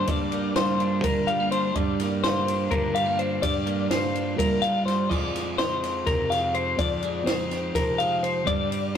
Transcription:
Already playing: clean electric guitar G3 A#3 D4 F4
0.07 clean electric guitar G2 D5, fingered electric bass G2, kick, ride
0.32 clean electric guitar A#3, ride
0.56 fingered electric bass G2, clean electric guitar F4 C5, snare, ride
0.80 clean electric guitar D4, ride
1.04 clean electric guitar D3 A#4, fingered electric bass G3, kick, ride
1.27 clean electric guitar G3 F5, ride
1.40 clean electric guitar A#3
1.51 clean electric guitar D4 C5, ride
1.75 fingered electric bass G2, clean electric guitar G2 D5, kick, ride
2.00 clean electric guitar A#3, snare, ride
2.24 clean electric guitar F4 C5, snare, ride
2.48 clean electric guitar D4, ride
2.71 fingered electric bass G2, clean electric guitar D3 A#4, kick, ride
2.94 clean electric guitar G3 F5, ride
3.06 clean electric guitar A#3
3.18 clean electric guitar D4 C5, ride
3.41 clean electric guitar G2 D5, fingered electric bass G2, kick, ride
3.66 clean electric guitar A#3, ride
3.90 fingered electric bass G2, clean electric guitar F4 C5, snare, ride
4.15 clean electric guitar D4, ride
4.38 clean electric guitar A#2 A#4, fingered electric bass G3, kick, ride
4.62 clean electric guitar G#2 F5, ride
4.86 clean electric guitar G2 C5, snare, ride
5.09 clean electric guitar F2 F3 G#3 C4 D#4 D5, fingered electric bass F2, kick, crash
5.35 clean electric guitar G#3, snare, ride
5.58 clean electric guitar D#4 C5, snare, ride
5.83 clean electric guitar C4, snare, ride
6.06 fingered electric bass F2, clean electric guitar C3 A#4, kick, snare, ride
6.30 clean electric guitar G#3 F5, snare, ride
6.54 clean electric guitar C4 C5, ride
6.78 clean electric guitar F2 D5, fingered electric bass F2, kick, ride
7.02 clean electric guitar G#3, ride
7.26 fingered electric bass F2, clean electric guitar D#4 C5, snare, ride
7.51 clean electric guitar C4, snare, ride
7.75 clean electric guitar C3 A#4, fingered electric bass F3, kick, snare, ride
7.98 clean electric guitar G#3 F5, ride
8.23 clean electric guitar C4 C5, ride
8.46 clean electric guitar G2 D5, fingered electric bass G2, kick, ride
8.71 clean electric guitar C4, ride

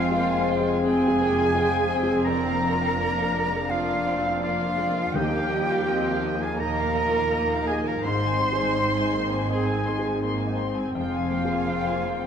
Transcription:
Already playing: double bass section F1, grand piano F2 G#3 F4, cello section F2, harp F3 G#3 C4 F4 G#4 C5, french horn section G#3 C4, viola section C4, cello F4, oboe F5, flute F5, violin section F5 G#5
0.12 grand piano G#3, viola section A#3, harp G#4, violin section G5
0.31 harp C5, violin section G#5
0.37 grand piano C4
0.49 viola section G#3, harp F5, violin section G5
0.60 grand piano G#3
0.67 harp G#5, violin section G#5
0.82 grand piano C3, viola section C4, cello G#4, harp F5, oboe G#5, violin section G#5, flute G#5
0.86 violin section G5
1.02 harp G#5, violin section G#5
1.08 grand piano G#3
1.21 viola section A#3, harp F5, violin section G5
1.31 grand piano F4
1.38 violin section G#5
1.55 grand piano G#3, viola section G#3, harp F5
1.59 violin section G5
1.75 harp C5, violin section G#5
1.80 grand piano C4
1.92 viola section C4, harp G#4, violin section G5
2.03 grand piano G#3
2.11 harp F4, violin section G#5
2.24 grand piano F2, harp F3, french horn section F3 D4, cello A#4, violin section D5, oboe A#5, flute A#5
2.29 violin section A#5
2.45 harp A#3, grand piano A#3, violin section F5
2.63 harp D4, violin section D5
2.74 grand piano F4
2.81 harp F4, violin section F5
2.98 grand piano A#3, viola section A#3, harp A#4, violin section D5
3.16 harp D5, violin section F5
3.22 grand piano D4
3.33 viola section G#3, violin section D5, harp F5
3.46 grand piano A#3
3.51 violin section F5, harp A#5
3.68 grand piano F3, viola section A#3, cello F4, violin section D5 F5, harp F5, flute F5, oboe F5
3.87 violin section F5, harp A#5
3.93 grand piano A#3
4.04 viola section C4, violin section D5, harp F5
4.18 grand piano F4
4.22 violin section F5, harp A#5
4.40 grand piano A#3, viola section A#3, cello F4, violin section D5, harp F5, flute F5, oboe F5
4.44 violin section F5
4.59 harp D5, violin section F5
4.67 grand piano D4
4.78 viola section G#3, harp A#4, violin section D5
4.90 grand piano A#3
4.95 harp F4, violin section F5
5.13 cello section D#2, double bass section D#2, grand piano D#2, harp D#3, timpani D#3, viola section A#3, french horn section D#4, cello G4, violin section D#5 G5, flute G5, oboe G5
5.32 harp A#3, violin section F5
5.39 grand piano A#3
5.50 viola section G3, harp D#4, violin section D#5
5.63 grand piano F4
5.68 harp F4, violin section F5
5.86 grand piano A#3, viola section C4, harp A#4, violin section D#5
6.05 harp D#5, violin section F5
6.11 grand piano D#4
6.23 viola section A#3, violin section D#5, harp F5
6.35 grand piano A#3
6.40 cello G#4, violin section F5 G#5, flute G#5, oboe G#5, harp A#5
6.58 grand piano A#2, cello A#4, violin section D#5 A#5, harp F5, flute A#5, oboe A#5
6.77 violin section F5, harp A#5
6.84 grand piano A#3
6.94 violin section D#5, harp F5
7.07 grand piano F4
7.16 violin section F5
7.31 grand piano A#3, violin section D#5, harp F5
7.51 harp D#5, violin section F5
7.55 grand piano D#4
7.67 cello G#4, harp A#4, violin section D#5 G#5, flute G#5, oboe G#5
7.80 grand piano A#3
7.86 harp F4, cello A#4, violin section F5 A#5, flute A#5, oboe A#5
8.04 double bass section G#1, cello section G#2, grand piano G#2, harp G#2, viola section G#3, french horn section C4, cello C5, oboe C6, flute C6, violin section C6
8.23 harp D#3, violin section G#5
8.29 grand piano C4
8.40 viola section G3, harp C4, violin section C6
8.52 grand piano G#4
8.58 harp D#4, violin section G#5
8.77 viola section G#3, grand piano C4, harp G#4, violin section C6
8.96 harp C5, violin section G#5
9.00 grand piano D#4
9.13 viola section A#3, harp D#5, violin section C6
9.25 grand piano C4
9.32 violin section G#5, harp G#5
9.49 grand piano D#3, viola section C4, cello G#4, harp D#5, oboe G#5, flute G#5, violin section G#5 C6
9.67 violin section G#5
9.75 grand piano C4
9.86 viola section G#3, harp D#5, violin section C6
9.99 grand piano G#4
10.04 violin section G#5, harp G#5
10.22 viola section A#3, grand piano C4, harp D#5, violin section C6
10.39 harp C5, violin section G#5
10.47 grand piano D#4
10.58 viola section C4, harp G#4, violin section C6
10.71 grand piano C4
10.76 harp D#4, violin section G#5
10.95 double bass section F1, grand piano F2, cello section F2, harp F3, french horn section F4, cello F4, violin section F5 G5, oboe F5
10.99 viola section G#3, flute F5
11.14 harp C4, violin section G#5
11.20 grand piano C4
11.31 viola section A#3, harp F4, violin section G5
11.45 grand piano G#4
11.51 harp G#4, violin section G#5
11.68 grand piano C4, harp C5, violin section G5
11.87 harp F5, violin section G#5
11.94 grand piano F4
12.06 violin section G5, harp G#5
12.19 grand piano C4

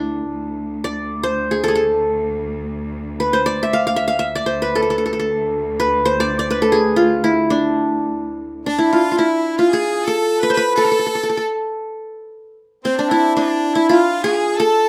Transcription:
Already playing: cello section D2, qanun D4 E4
0.30 cello section D2
0.84 qanun D5
1.23 qanun C5
1.51 qanun G#4
1.64 qanun A4
1.68 qanun G#4
1.75 qanun A4
3.20 qanun B4
3.33 qanun C5
3.46 qanun D5
3.63 qanun E5
3.73 qanun F5
3.87 qanun F5
3.96 qanun E5
4.08 qanun F5
4.19 qanun E5
4.35 qanun D5
4.46 cello section D2, qanun C5
4.62 qanun B4
4.75 qanun A4
4.82 qanun A4
4.90 qanun A4
4.98 qanun A4
5.06 qanun A4
5.13 qanun A4
5.20 qanun A4
5.80 qanun B4
6.05 qanun C5
6.20 qanun D5
6.39 qanun D5
6.50 qanun B4
6.62 qanun A4
6.72 qanun G#4
6.96 qanun F4
7.24 qanun E4
7.50 qanun D4
8.66 violin section D4, qanun D4, harmonica D4
8.78 qanun E4, harmonica E4
8.93 qanun F4, violin section F4, harmonica F4
9.11 qanun F4
9.17 harmonica E4, qanun E4, violin section E4
9.57 harmonica F4, violin section F4, qanun F4
9.70 harmonica G#4, violin section G#4, qanun G#4
10.05 violin section A4, harmonica A4, qanun A4
10.41 harmonica B4, violin section B4, qanun B4
10.50 harmonica B4, qanun C5
10.57 qanun B4
10.76 harmonica A4, violin section A4, qanun A4
10.85 qanun A4
10.92 qanun A4
10.99 qanun A4
11.06 qanun A4
11.15 qanun A4
11.23 qanun A4
11.29 qanun A4
11.37 qanun A4
12.84 violin section C4, harmonica C4, qanun C4
12.97 harmonica D4, qanun D4
13.09 harmonica E4, violin section E4, qanun E4
13.35 harmonica D4, qanun D4, violin section D4
13.74 violin section E4, harmonica E4, qanun E4
13.87 violin section F4, harmonica F4, qanun F4
14.23 violin section G#4, harmonica G#4, qanun G#4
14.56 violin section A4, harmonica A4, qanun A4

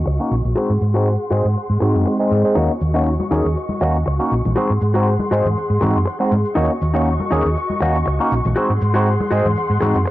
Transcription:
Already playing: string section F#4 D#5 C#6
0.06 fingered electric bass C#2, muted clean electric guitar stroke, cabasa
0.19 tine electric piano A#3 C#4 D#4 F#4, muted clean electric guitar stroke
0.31 fingered electric bass A#1, cabasa
0.45 fingered electric bass A#1, cabasa
0.56 tine electric piano G#3 C4 D#4 F#4, clean electric guitar F#4 G#4 C5, string section G#4 F#5 C6, cabasa
0.70 fingered electric bass G#2
0.81 fingered electric bass G#2, muted clean electric guitar stroke, cabasa
0.94 tine electric piano G#3 C4 D#4 F#4, clean electric guitar F#4 G#4 C5, cabasa
1.06 cabasa
1.31 fingered electric bass G#2, tine electric piano G#3 C4 D#4 G#4, clean electric guitar F#4 G#4 C5, cabasa
1.45 fingered electric bass G#2, cabasa
1.56 muted clean electric guitar stroke, cabasa
1.70 fingered electric bass G#2
1.80 fingered electric bass G#2, tine electric piano G#3 C4 D#4 F#4, muted clean electric guitar stroke, cabasa
1.94 fingered electric bass F#2, muted clean electric guitar stroke, cabasa
2.06 muted clean electric guitar stroke, cabasa
2.19 tine electric piano G#3 C4 D#4 G#4, muted clean electric guitar stroke
2.31 fingered electric bass G#2, cabasa
2.44 tine electric piano G#3 C4 D#4 G#4, cabasa
2.55 fingered electric bass D#2, tine electric piano A#3 C#4 D#4 F#4, clean electric guitar D#4 F#4 C#5, string section F#4 D#5 C#6, cabasa, maracas
2.70 maracas
2.80 fingered electric bass D#2, muted clean electric guitar stroke, cabasa, maracas
2.94 tine electric piano A#3 C#4 D#4 F#4, clean electric guitar D#4 F#4 C#5, cabasa, maracas
3.06 cabasa, maracas
3.19 high conga, maracas
3.31 fingered electric bass D#2, tine electric piano A#3 C#4 D#4 G#4, clean electric guitar D#4 F#4 C#5, cabasa, maracas
3.45 fingered electric bass D#2, cabasa, maracas
3.56 muted clean electric guitar stroke, cabasa, maracas
3.69 high conga, maracas
3.81 fingered electric bass D#2, tine electric piano A#3 C#4 D#4 F#4, muted clean electric guitar stroke, cabasa, maracas
3.95 muted clean electric guitar stroke, cabasa, maracas
4.06 fingered electric bass C#2, muted clean electric guitar stroke, cabasa, maracas
4.19 tine electric piano A#3 C#4 D#4 F#4, muted clean electric guitar stroke, maracas
4.31 fingered electric bass A#1, cabasa, maracas
4.44 fingered electric bass A#1, high conga, low conga, cabasa, maracas
4.56 tine electric piano G#3 C4 D#4 F#4, clean electric guitar F#4 G#4 C5, string section G#4 F#5 C6, muted fingered electric bass stroke, cabasa, maracas
4.70 fingered electric bass G#2, maracas
4.81 fingered electric bass G#2, muted clean electric guitar stroke, cabasa, maracas
4.94 tine electric piano G#3 C4 D#4 F#4, clean electric guitar F#4 G#4 C5, cabasa, maracas
5.07 cabasa, maracas
5.19 high conga, maracas
5.31 fingered electric bass G#2, tine electric piano G#3 C4 D#4 G#4, clean electric guitar F#4 G#4 C5, cabasa, maracas
5.45 fingered electric bass G#2, low conga, cabasa, maracas
5.56 muted clean electric guitar stroke, cabasa, maracas
5.70 fingered electric bass G#2, maracas
5.81 fingered electric bass G#2, tine electric piano G#3 C4 D#4 F#4, muted clean electric guitar stroke, low conga, cabasa, maracas
5.94 fingered electric bass F#2, muted clean electric guitar stroke, cabasa, maracas
6.06 muted clean electric guitar stroke, cabasa, maracas
6.19 tine electric piano G#3 C4 D#4 F#4, muted clean electric guitar stroke, maracas
6.31 fingered electric bass G#2, high conga, cabasa, maracas
6.45 cabasa, maracas
6.55 fingered electric bass D#2, tine electric piano A#3 C#4 D#4 F#4, clean electric guitar D#4 F#4 C#5, string section F#4 D#5 C#6, cabasa, maracas
6.71 maracas
6.81 fingered electric bass D#2, muted clean electric guitar stroke, cabasa, maracas
6.94 tine electric piano A#3 C#4 D#4 F#4, clean electric guitar D#4 F#4 C#5, cabasa, maracas
7.07 cabasa, maracas
7.20 high conga, maracas
7.31 fingered electric bass D#2, tine electric piano A#3 C#4 D#4 G#4, clean electric guitar D#4 F#4 C#5, cabasa, maracas
7.45 fingered electric bass D#2, cabasa, maracas
7.56 muted clean electric guitar stroke, cabasa, maracas
7.70 high conga, maracas
7.81 fingered electric bass D#2, tine electric piano A#3 C#4 D#4 F#4, muted clean electric guitar stroke, cabasa, maracas
7.94 muted clean electric guitar stroke, cabasa, maracas
8.06 fingered electric bass C#2, muted clean electric guitar stroke, cabasa, maracas
8.19 tine electric piano A#3 C#4 D#4 F#4, muted clean electric guitar stroke, maracas
8.32 fingered electric bass A#1, cabasa, maracas
8.45 fingered electric bass A#1, high conga, low conga, cabasa, maracas
8.56 tine electric piano G#3 C4 D#4 F#4, clean electric guitar F#4 G#4 C5, string section G#4 F#5 C6, cabasa, maracas
8.70 fingered electric bass G#2, high conga, maracas
8.81 fingered electric bass G#2, muted clean electric guitar stroke, cabasa, maracas
8.94 tine electric piano G#3 C4 D#4 F#4, clean electric guitar F#4 G#4 C5, cabasa, maracas
9.06 cabasa, maracas
9.20 high conga, maracas
9.31 fingered electric bass G#2, tine electric piano G#3 C4 D#4 G#4, clean electric guitar F#4 G#4 C5, cabasa, maracas
9.45 fingered electric bass G#2, low conga, cabasa, maracas
9.56 muted clean electric guitar stroke, cabasa, maracas
9.70 fingered electric bass G#2, maracas
9.81 fingered electric bass G#2, tine electric piano G#3 C4 D#4 F#4, muted clean electric guitar stroke, low conga, cabasa, maracas
9.94 fingered electric bass F#2, muted clean electric guitar stroke, cabasa, maracas
10.06 muted clean electric guitar stroke, cabasa, maracas

